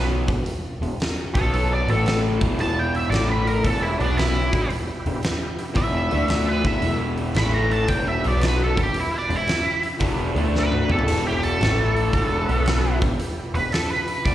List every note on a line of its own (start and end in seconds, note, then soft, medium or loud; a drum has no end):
0.00 0.25 B1 medium
0.00 0.28 B2 medium
0.00 0.28 F#3 medium
0.00 0.29 B3 loud
0.28 0.45 E1 medium
0.28 0.42 E2 medium
0.28 0.43 B2 medium
0.28 kick loud
0.28 open hi-hat medium
0.46 open hi-hat medium
0.81 0.97 E1 medium
0.81 0.96 E2 medium
0.81 0.96 B2 medium
0.81 open hi-hat medium
1.00 snare loud
1.00 open hi-hat medium
1.34 1.84 B1 loud
1.34 1.87 B2 medium
1.34 1.88 F#3 medium
1.34 1.88 B3 loud
1.34 1.51 A4 medium
1.34 kick loud
1.34 open hi-hat medium
1.54 1.70 A4 medium
1.54 open hi-hat medium
1.73 1.89 D5 medium
1.87 2.37 A1 medium
1.87 2.40 A2 medium
1.87 2.41 E3 medium
1.87 2.41 A3 loud
1.87 2.17 A4 loud
1.87 open hi-hat medium
2.06 snare loud
2.06 open hi-hat medium
2.41 2.56 E1 medium
2.41 2.58 E2 medium
2.41 2.59 B2 medium
2.41 2.59 E3 loud
2.41 kick medium
2.41 open hi-hat medium
2.56 3.07 E1 medium
2.56 3.09 B3 medium
2.56 3.10 E4 medium
2.56 3.09 G4 medium
2.56 open hi-hat medium
2.60 3.12 E2 loud
2.60 3.10 B2 medium
2.60 3.11 E3 loud
2.60 2.79 A5 loud
2.79 2.96 G5 medium
2.95 3.12 E5 medium
2.95 open hi-hat medium
3.10 3.60 A1 medium
3.10 3.63 A2 medium
3.10 3.64 E3 medium
3.10 3.64 A3 medium
3.10 3.64 A3 loud
3.10 3.64 E4 medium
3.10 3.64 A4 medium
3.10 3.30 D5 medium
3.10 open hi-hat medium
3.14 snare loud
3.30 3.47 B4 medium
3.47 3.63 A#4 medium
3.47 open hi-hat medium
3.63 3.98 E1 medium
3.63 3.99 E2 medium
3.63 4.00 B2 medium
3.63 4.00 E3 loud
3.63 3.81 A4 medium
3.63 kick medium
3.63 open hi-hat medium
3.83 3.99 E4 medium
3.99 4.49 B1 medium
3.99 4.52 B2 medium
3.99 4.53 F#3 medium
3.99 4.51 B3 medium
3.99 4.53 B3 medium
3.99 4.17 D4 medium
3.99 4.53 F#4 medium
3.99 4.53 B4 medium
3.99 open hi-hat medium
4.17 4.69 E4 loud
4.17 snare loud
4.17 open hi-hat medium
4.51 4.69 E1 medium
4.51 4.67 E2 medium
4.51 4.67 B2 medium
4.51 6.10 B3 medium
4.51 6.11 E4 medium
4.51 6.10 G4 medium
4.51 kick loud
4.51 open hi-hat medium
4.70 open hi-hat medium
5.06 5.22 E1 medium
5.06 5.20 E2 medium
5.06 5.21 B2 medium
5.06 open hi-hat medium
5.23 snare loud
5.23 open hi-hat medium
5.59 open hi-hat medium
5.74 6.09 E1 medium
5.74 6.10 E2 medium
5.74 6.10 B2 medium
5.74 6.11 E3 loud
5.74 6.28 E5 medium
5.74 kick medium
5.74 open hi-hat medium
6.08 6.64 D3 medium
6.08 6.63 A3 medium
6.08 6.64 A3 medium
6.08 6.63 D4 medium
6.08 6.63 A4 medium
6.08 open hi-hat medium
6.12 6.62 D2 loud
6.12 6.64 D4 loud
6.28 6.47 E5 medium
6.28 snare loud
6.28 open hi-hat medium
6.48 6.65 B4 medium
6.62 6.81 E1 medium
6.62 6.81 E2 medium
6.62 6.82 B2 medium
6.62 6.82 E3 loud
6.62 7.33 B3 medium
6.62 7.30 E4 medium
6.62 7.34 G4 medium
6.62 kick loud
6.62 open hi-hat medium
6.67 6.95 E5 loud
6.82 7.32 E1 loud
6.82 7.35 E2 medium
6.82 7.35 B2 medium
6.82 7.36 E3 loud
6.82 open hi-hat medium
7.18 open hi-hat medium
7.32 7.85 A1 loud
7.32 7.88 A2 medium
7.32 7.87 A3 medium
7.32 7.86 E4 medium
7.32 7.86 A4 medium
7.32 open hi-hat medium
7.36 7.89 E3 loud
7.36 7.89 A3 loud
7.36 7.54 B5 medium
7.36 snare loud
7.54 7.71 A#5 medium
7.71 7.89 A5 medium
7.71 open hi-hat medium
7.88 8.22 E1 medium
7.88 8.23 E2 loud
7.88 8.22 B2 loud
7.88 8.24 E3 loud
7.88 8.06 G5 loud
7.88 kick medium
7.88 open hi-hat medium
8.08 8.24 E5 medium
8.21 8.74 B1 loud
8.21 8.76 B2 medium
8.21 8.76 F#3 medium
8.21 8.73 B3 medium
8.21 8.76 B3 loud
8.21 8.76 F#4 medium
8.21 8.76 B4 medium
8.21 open hi-hat medium
8.28 8.43 D5 medium
8.41 snare loud
8.41 open hi-hat medium
8.48 8.62 B4 loud
8.64 8.79 A4 medium
8.74 8.93 E1 medium
8.74 8.91 E2 medium
8.74 10.33 B3 medium
8.74 10.33 E4 medium
8.74 10.34 G4 medium
8.74 kick loud
8.74 open hi-hat medium
8.78 8.92 B2 medium
8.83 8.97 G4 medium
8.94 open hi-hat medium
9.00 9.15 E4 medium
9.18 9.36 D4 medium
9.29 9.46 E1 medium
9.29 9.44 E2 medium
9.29 9.44 B2 medium
9.29 open hi-hat medium
9.36 9.85 E4 loud
9.48 snare loud
9.48 open hi-hat medium
9.83 open hi-hat medium
9.99 10.34 E1 medium
9.99 10.35 E2 loud
9.99 10.35 B2 loud
9.99 10.36 E3 loud
9.99 kick medium
9.99 open hi-hat medium
10.34 10.85 D2 loud
10.34 10.88 D3 medium
10.34 10.88 A3 medium
10.34 10.88 D4 medium
10.34 10.89 D4 medium
10.34 10.88 A4 medium
10.34 open hi-hat medium
10.56 10.91 B4 loud
10.56 snare medium
10.72 mid tom medium
10.85 11.04 E2 medium
10.85 11.57 B3 medium
10.85 11.57 E4 medium
10.85 11.57 G4 medium
10.90 11.06 E1 medium
10.90 11.05 B2 medium
10.90 11.06 E3 loud
10.90 11.25 A4 medium
10.90 mid tom medium
10.99 floor tom medium
11.05 11.56 E1 medium
11.05 11.58 E2 medium
11.05 11.59 B2 loud
11.05 11.60 E3 loud
11.05 open hi-hat medium
11.05 splash medium
11.27 11.43 G4 medium
11.43 12.98 A4 medium
11.43 open hi-hat medium
11.58 12.10 A1 medium
11.58 12.12 A2 loud
11.58 12.12 E3 loud
11.58 12.11 A3 medium
11.58 12.13 A3 loud
11.58 12.12 E4 medium
11.58 12.12 A4 medium
11.58 open hi-hat medium
11.63 snare loud
11.97 open hi-hat medium
12.12 12.46 E1 medium
12.12 12.47 E2 loud
12.12 12.47 B2 loud
12.12 12.48 E3 loud
12.12 kick medium
12.12 open hi-hat medium
12.45 12.98 B3 medium
12.45 13.00 F#4 medium
12.45 13.00 B4 medium
12.49 12.98 B1 medium
12.49 13.01 B2 medium
12.49 13.01 F#3 medium
12.49 13.01 B3 loud
12.49 open hi-hat medium
12.66 snare loud
12.66 open hi-hat medium
12.99 13.18 E1 medium
12.99 14.35 B3 medium
12.99 14.35 E4 medium
12.99 14.35 G4 medium
12.99 kick loud
12.99 open hi-hat medium
13.05 13.17 E2 medium
13.05 13.17 B2 medium
13.20 open hi-hat medium
13.54 13.71 E1 medium
13.54 13.70 E2 medium
13.54 13.70 B2 medium
13.54 13.72 B4 loud
13.54 open hi-hat medium
13.72 13.90 A4 medium
13.72 snare loud
13.72 open hi-hat medium
13.90 14.24 B4 medium
14.08 open hi-hat medium
14.25 14.35 E1 medium
14.25 14.35 E2 medium
14.25 14.35 B2 loud
14.25 14.35 E3 medium
14.25 14.35 D5 loud
14.25 kick medium
14.25 open hi-hat medium